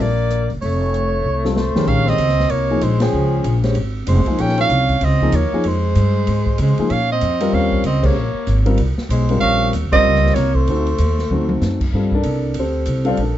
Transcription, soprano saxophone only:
0.02 0.51 D5 medium
0.62 1.52 C#5 medium
1.58 1.91 C5 medium
1.89 2.11 F5 loud
2.09 2.52 D#5 loud
2.51 2.85 C#5 medium
2.84 3.04 C5 medium
3.02 3.64 G#4 medium
4.09 4.43 C5 medium
4.41 4.59 G5 loud
4.61 5.06 F5 loud
5.05 5.37 D#5 medium
5.36 5.69 C#5 medium
5.68 6.61 C5 loud
6.62 6.93 C5 medium
6.92 7.10 F5 loud
7.12 7.56 D#5 medium
7.54 7.85 F5 medium
7.87 8.08 D#5 medium
8.06 8.68 C#5 medium
9.11 9.40 C5 medium
9.41 9.70 F5 loud
9.93 10.36 D#5 loud
10.35 10.57 C#5 medium
10.55 11.61 C5 medium

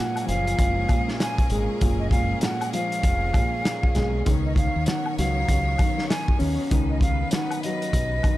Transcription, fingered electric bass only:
0.29 0.54 F#1 loud
0.59 0.85 F#1 loud
1.51 1.67 G#1 medium
1.82 2.33 F#1 loud
3.04 3.30 F1 loud
3.96 4.22 B1 loud
4.27 4.68 C#2 loud
4.76 4.86 D#2 medium
5.19 5.44 C#2 loud
5.49 5.75 C#2 medium
6.41 6.56 D#2 medium
6.72 7.23 C#2 loud
7.94 8.19 B1 medium

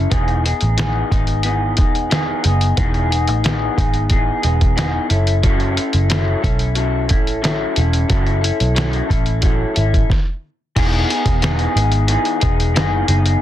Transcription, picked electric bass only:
0.12 0.52 E1 medium
0.62 1.02 A1 medium
1.12 1.79 G#1 medium
1.79 2.32 E1 medium
2.45 2.72 F#1 medium
2.78 3.28 E1 loud
3.28 3.68 A1 medium
3.78 4.31 G#1 medium
4.44 4.98 E1 medium
5.11 5.77 F#1 loud
5.94 6.34 F#1 medium
6.44 7.11 B1 medium
7.11 7.64 A1 medium
7.77 8.04 E1 medium
8.10 8.50 F#1 medium
8.61 9.00 B1 medium
9.10 9.63 A1 medium
9.77 10.03 G#1 medium
10.77 11.03 E1 loud
11.26 11.66 E1 loud
11.76 12.16 G#1 loud
12.43 12.76 E1 loud
12.76 13.02 F#1 loud
13.08 13.35 F#1 medium

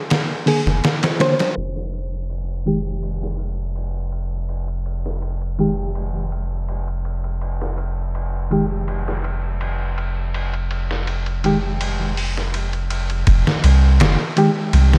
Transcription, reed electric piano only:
0.46 0.59 D3 medium
0.46 0.60 A#3 medium
0.46 0.60 G#4 medium
1.19 1.33 D3 medium
1.19 1.33 A#3 medium
1.19 1.33 C5 loud
2.66 2.79 D#3 medium
2.66 2.79 G#3 medium
2.66 2.80 G4 medium
5.59 5.72 D#3 medium
5.59 5.72 G#3 medium
5.59 5.73 G4 medium
8.51 8.64 D#3 medium
8.51 8.65 G#3 medium
8.51 8.65 G4 medium
11.44 11.57 D#3 medium
11.44 11.58 G#3 medium
11.44 11.58 G4 medium
14.37 14.50 D#3 medium
14.37 14.50 G#3 medium
14.37 14.51 G4 medium

